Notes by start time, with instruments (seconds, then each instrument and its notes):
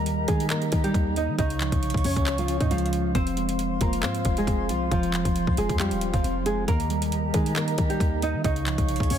Already playing: 808-style bass D#2, tine electric piano D#3 G3, nylon-string guitar A#3 A#4, flute section G4 A#4 D#5 A#5
0.06 closed hi-hat
0.28 808-style bass D#3, nylon-string guitar G#3 G#4, tine electric piano D#4, kick, closed hi-hat
0.40 closed hi-hat
0.50 nylon-string guitar A#3 A#4, tine electric piano D#5, clap, closed hi-hat
0.62 closed hi-hat
0.72 808-style bass D#3, tine electric piano D#4, kick, closed hi-hat
0.84 nylon-string guitar G3 G4, closed hi-hat
0.94 808-style bass D#2, tine electric piano A#3, kick, closed hi-hat
1.16 nylon-string guitar D#4 D#5, closed hi-hat
1.28 808-style bass D#3
1.38 808-style bass C#2, tine electric piano C#3, nylon-string guitar D#4 D#5, flute section F4 C#5 F5 C#6, kick, closed hi-hat
1.50 closed hi-hat
1.61 tine electric piano F3, clap, closed hi-hat
1.72 808-style bass C2, kick, closed hi-hat
1.83 closed hi-hat
1.90 closed hi-hat
1.94 808-style bass C#2, kick, closed hi-hat
2.04 808-style bass F2, tine electric piano C#4, nylon-string guitar C#4 C#5, open hi-hat
2.16 808-style bass C#2, kick, closed hi-hat
2.27 tine electric piano C#5, clap, closed hi-hat
2.38 nylon-string guitar F3 F4, closed hi-hat
2.48 tine electric piano C#4, closed hi-hat
2.61 808-style bass G#2, nylon-string guitar D#4 D#5, kick, closed hi-hat
2.71 808-style bass C#2, nylon-string guitar F3 F4, tine electric piano G#3, closed hi-hat
2.78 closed hi-hat
2.86 closed hi-hat
2.93 closed hi-hat
3.15 808-style bass F1, tine electric piano F3, nylon-string guitar C4 C5, flute section C5 C6, kick, closed hi-hat
3.27 closed hi-hat
3.37 tine electric piano G#3, closed hi-hat
3.49 closed hi-hat
3.59 closed hi-hat
3.81 808-style bass F1, nylon-string guitar A#3 A#4, tine electric piano F4, kick, closed hi-hat
3.93 closed hi-hat
4.03 808-style bass G#2, nylon-string guitar C4 C5, tine electric piano F5, clap, closed hi-hat
4.15 closed hi-hat
4.25 808-style bass F1, tine electric piano F4, kick, closed hi-hat
4.37 nylon-string guitar G#3 G#4, closed hi-hat
4.47 808-style bass F1, tine electric piano C4, kick, closed hi-hat
4.69 808-style bass C2, nylon-string guitar F3 F4, closed hi-hat
4.91 808-style bass F1, tine electric piano F3, nylon-string guitar F3 F4, kick, closed hi-hat
5.03 closed hi-hat
5.14 clap, closed hi-hat
5.25 808-style bass F1, kick, closed hi-hat
5.36 closed hi-hat
5.47 808-style bass C2, kick
5.57 808-style bass F1, nylon-string guitar G#3 G#4, tine electric piano F4, closed hi-hat
5.69 808-style bass F2, kick, closed hi-hat
5.80 nylon-string guitar G3 G4, tine electric piano F5, clap, closed hi-hat
5.91 808-style bass D#1, closed hi-hat
6.01 tine electric piano F4, closed hi-hat
6.14 808-style bass F1, nylon-string guitar F3 F4, kick, closed hi-hat
6.24 808-style bass F1, tine electric piano C4, closed hi-hat
6.46 nylon-string guitar G#3 G#4, closed hi-hat
6.68 808-style bass D#2, tine electric piano D#3, nylon-string guitar A#3 A#4, flute section G4 A#4 D#5 A#5, kick, closed hi-hat
6.80 closed hi-hat
6.90 tine electric piano G3, closed hi-hat
7.02 closed hi-hat
7.12 closed hi-hat
7.34 808-style bass D#3, nylon-string guitar G#3 G#4, tine electric piano D#4, kick, closed hi-hat
7.46 closed hi-hat
7.56 nylon-string guitar A#3 A#4, tine electric piano D#5, clap, closed hi-hat
7.68 closed hi-hat
7.78 808-style bass D#3, tine electric piano D#4, kick, closed hi-hat
7.90 nylon-string guitar G3 G4, closed hi-hat
8.00 808-style bass D#2, tine electric piano A#3, kick, closed hi-hat
8.22 nylon-string guitar D#4 D#5, closed hi-hat
8.34 808-style bass D#3
8.44 808-style bass C#2, tine electric piano C#3, nylon-string guitar D#4 D#5, flute section G#4 C#5 F5 C#6, kick, closed hi-hat
8.56 closed hi-hat
8.66 tine electric piano F3, clap, closed hi-hat
8.78 808-style bass C2, kick, closed hi-hat
8.89 closed hi-hat
8.96 closed hi-hat
9.00 808-style bass C#2, kick, closed hi-hat
9.10 808-style bass F2, tine electric piano C#4, nylon-string guitar C#4 C#5, open hi-hat